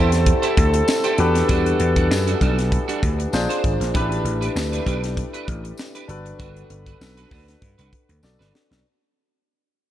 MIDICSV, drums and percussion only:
0, 0, Header, 1, 2, 480
1, 0, Start_track
1, 0, Key_signature, 1, "major"
1, 0, Tempo, 612870
1, 1171, Time_signature, 4, 2, 24, 8
1, 7758, End_track
2, 0, Start_track
2, 0, Title_t, "Drums"
2, 95, Note_on_c, 9, 42, 55
2, 101, Note_on_c, 9, 38, 38
2, 174, Note_off_c, 9, 42, 0
2, 179, Note_off_c, 9, 38, 0
2, 206, Note_on_c, 9, 42, 84
2, 208, Note_on_c, 9, 36, 97
2, 285, Note_off_c, 9, 42, 0
2, 286, Note_off_c, 9, 36, 0
2, 337, Note_on_c, 9, 42, 52
2, 415, Note_off_c, 9, 42, 0
2, 450, Note_on_c, 9, 36, 96
2, 452, Note_on_c, 9, 42, 86
2, 528, Note_off_c, 9, 36, 0
2, 530, Note_off_c, 9, 42, 0
2, 577, Note_on_c, 9, 42, 55
2, 655, Note_off_c, 9, 42, 0
2, 687, Note_on_c, 9, 54, 90
2, 694, Note_on_c, 9, 38, 115
2, 765, Note_off_c, 9, 54, 0
2, 772, Note_off_c, 9, 38, 0
2, 815, Note_on_c, 9, 42, 61
2, 893, Note_off_c, 9, 42, 0
2, 924, Note_on_c, 9, 42, 68
2, 1002, Note_off_c, 9, 42, 0
2, 1060, Note_on_c, 9, 42, 54
2, 1069, Note_on_c, 9, 38, 34
2, 1138, Note_off_c, 9, 42, 0
2, 1147, Note_off_c, 9, 38, 0
2, 1167, Note_on_c, 9, 42, 92
2, 1170, Note_on_c, 9, 36, 118
2, 1246, Note_off_c, 9, 42, 0
2, 1248, Note_off_c, 9, 36, 0
2, 1302, Note_on_c, 9, 42, 48
2, 1380, Note_off_c, 9, 42, 0
2, 1407, Note_on_c, 9, 42, 77
2, 1485, Note_off_c, 9, 42, 0
2, 1537, Note_on_c, 9, 42, 56
2, 1538, Note_on_c, 9, 36, 83
2, 1616, Note_off_c, 9, 36, 0
2, 1616, Note_off_c, 9, 42, 0
2, 1656, Note_on_c, 9, 38, 104
2, 1657, Note_on_c, 9, 54, 93
2, 1735, Note_off_c, 9, 38, 0
2, 1735, Note_off_c, 9, 54, 0
2, 1782, Note_on_c, 9, 42, 53
2, 1860, Note_off_c, 9, 42, 0
2, 1889, Note_on_c, 9, 36, 88
2, 1892, Note_on_c, 9, 42, 63
2, 1968, Note_off_c, 9, 36, 0
2, 1970, Note_off_c, 9, 42, 0
2, 2025, Note_on_c, 9, 42, 60
2, 2030, Note_on_c, 9, 38, 35
2, 2103, Note_off_c, 9, 42, 0
2, 2109, Note_off_c, 9, 38, 0
2, 2131, Note_on_c, 9, 36, 92
2, 2133, Note_on_c, 9, 42, 82
2, 2209, Note_off_c, 9, 36, 0
2, 2211, Note_off_c, 9, 42, 0
2, 2264, Note_on_c, 9, 42, 54
2, 2342, Note_off_c, 9, 42, 0
2, 2372, Note_on_c, 9, 36, 103
2, 2377, Note_on_c, 9, 42, 76
2, 2450, Note_off_c, 9, 36, 0
2, 2455, Note_off_c, 9, 42, 0
2, 2504, Note_on_c, 9, 42, 55
2, 2583, Note_off_c, 9, 42, 0
2, 2608, Note_on_c, 9, 54, 84
2, 2618, Note_on_c, 9, 38, 109
2, 2686, Note_off_c, 9, 54, 0
2, 2696, Note_off_c, 9, 38, 0
2, 2743, Note_on_c, 9, 42, 59
2, 2822, Note_off_c, 9, 42, 0
2, 2852, Note_on_c, 9, 36, 97
2, 2853, Note_on_c, 9, 42, 67
2, 2930, Note_off_c, 9, 36, 0
2, 2931, Note_off_c, 9, 42, 0
2, 2985, Note_on_c, 9, 42, 55
2, 2994, Note_on_c, 9, 38, 32
2, 3064, Note_off_c, 9, 42, 0
2, 3073, Note_off_c, 9, 38, 0
2, 3092, Note_on_c, 9, 36, 119
2, 3093, Note_on_c, 9, 42, 97
2, 3171, Note_off_c, 9, 36, 0
2, 3171, Note_off_c, 9, 42, 0
2, 3226, Note_on_c, 9, 42, 48
2, 3304, Note_off_c, 9, 42, 0
2, 3333, Note_on_c, 9, 42, 82
2, 3411, Note_off_c, 9, 42, 0
2, 3463, Note_on_c, 9, 42, 55
2, 3542, Note_off_c, 9, 42, 0
2, 3575, Note_on_c, 9, 54, 91
2, 3580, Note_on_c, 9, 38, 110
2, 3653, Note_off_c, 9, 54, 0
2, 3658, Note_off_c, 9, 38, 0
2, 3704, Note_on_c, 9, 42, 51
2, 3783, Note_off_c, 9, 42, 0
2, 3811, Note_on_c, 9, 36, 90
2, 3816, Note_on_c, 9, 42, 68
2, 3889, Note_off_c, 9, 36, 0
2, 3895, Note_off_c, 9, 42, 0
2, 3944, Note_on_c, 9, 42, 57
2, 3949, Note_on_c, 9, 38, 36
2, 4023, Note_off_c, 9, 42, 0
2, 4028, Note_off_c, 9, 38, 0
2, 4051, Note_on_c, 9, 36, 103
2, 4053, Note_on_c, 9, 42, 86
2, 4129, Note_off_c, 9, 36, 0
2, 4132, Note_off_c, 9, 42, 0
2, 4183, Note_on_c, 9, 42, 52
2, 4261, Note_off_c, 9, 42, 0
2, 4292, Note_on_c, 9, 36, 98
2, 4298, Note_on_c, 9, 42, 82
2, 4370, Note_off_c, 9, 36, 0
2, 4376, Note_off_c, 9, 42, 0
2, 4424, Note_on_c, 9, 42, 54
2, 4502, Note_off_c, 9, 42, 0
2, 4523, Note_on_c, 9, 54, 82
2, 4538, Note_on_c, 9, 38, 101
2, 4602, Note_off_c, 9, 54, 0
2, 4616, Note_off_c, 9, 38, 0
2, 4661, Note_on_c, 9, 42, 60
2, 4740, Note_off_c, 9, 42, 0
2, 4770, Note_on_c, 9, 42, 64
2, 4849, Note_off_c, 9, 42, 0
2, 4902, Note_on_c, 9, 42, 55
2, 4980, Note_off_c, 9, 42, 0
2, 5009, Note_on_c, 9, 42, 97
2, 5010, Note_on_c, 9, 36, 120
2, 5087, Note_off_c, 9, 42, 0
2, 5088, Note_off_c, 9, 36, 0
2, 5141, Note_on_c, 9, 42, 47
2, 5220, Note_off_c, 9, 42, 0
2, 5248, Note_on_c, 9, 42, 83
2, 5327, Note_off_c, 9, 42, 0
2, 5377, Note_on_c, 9, 36, 85
2, 5378, Note_on_c, 9, 42, 54
2, 5455, Note_off_c, 9, 36, 0
2, 5456, Note_off_c, 9, 42, 0
2, 5493, Note_on_c, 9, 54, 88
2, 5495, Note_on_c, 9, 38, 115
2, 5571, Note_off_c, 9, 54, 0
2, 5573, Note_off_c, 9, 38, 0
2, 5618, Note_on_c, 9, 42, 48
2, 5696, Note_off_c, 9, 42, 0
2, 5728, Note_on_c, 9, 36, 94
2, 5731, Note_on_c, 9, 46, 64
2, 5806, Note_off_c, 9, 36, 0
2, 5809, Note_off_c, 9, 46, 0
2, 5861, Note_on_c, 9, 42, 61
2, 5866, Note_on_c, 9, 38, 37
2, 5939, Note_off_c, 9, 42, 0
2, 5944, Note_off_c, 9, 38, 0
2, 5968, Note_on_c, 9, 36, 95
2, 5968, Note_on_c, 9, 42, 85
2, 6046, Note_off_c, 9, 42, 0
2, 6047, Note_off_c, 9, 36, 0
2, 6099, Note_on_c, 9, 42, 53
2, 6177, Note_off_c, 9, 42, 0
2, 6209, Note_on_c, 9, 36, 93
2, 6212, Note_on_c, 9, 42, 78
2, 6287, Note_off_c, 9, 36, 0
2, 6290, Note_off_c, 9, 42, 0
2, 6339, Note_on_c, 9, 42, 52
2, 6417, Note_off_c, 9, 42, 0
2, 6444, Note_on_c, 9, 54, 84
2, 6456, Note_on_c, 9, 38, 55
2, 6523, Note_off_c, 9, 54, 0
2, 6534, Note_off_c, 9, 38, 0
2, 6586, Note_on_c, 9, 38, 57
2, 6664, Note_off_c, 9, 38, 0
2, 6698, Note_on_c, 9, 38, 95
2, 6776, Note_off_c, 9, 38, 0
2, 6827, Note_on_c, 9, 38, 90
2, 6905, Note_off_c, 9, 38, 0
2, 7758, End_track
0, 0, End_of_file